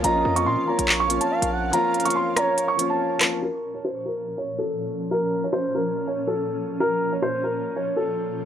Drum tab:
HH |x-----x-------x-----x-x---x-----|x---xxxx----x---x---x-------x---|--------------------------------|--------------------------------|
CP |----------------x---------------|----------------------------x---|--------------------------------|--------------------------------|
SD |--------------------------------|------------r---------------r---|--------------------------------|--------------------------------|

HH |--------------------------------|
CP |--------------------------------|
SD |--------------------------------|